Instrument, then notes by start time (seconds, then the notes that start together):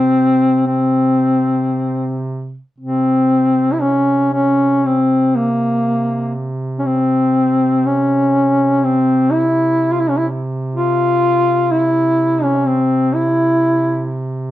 duduk
Already playing: C3 C4
0.67 C4
2.78 C3 C4
3.73 E4
3.82 C#4
4.33 C#4
4.85 C4
5.36 A#3
6.79 C#4
6.86 C4
7.86 C#4
8.84 C4
9.32 E4
9.92 F4
10.00 E4
10.10 C#4
10.17 E4
10.75 F4
11.71 E4
12.43 C#4
12.67 C4
13.14 E4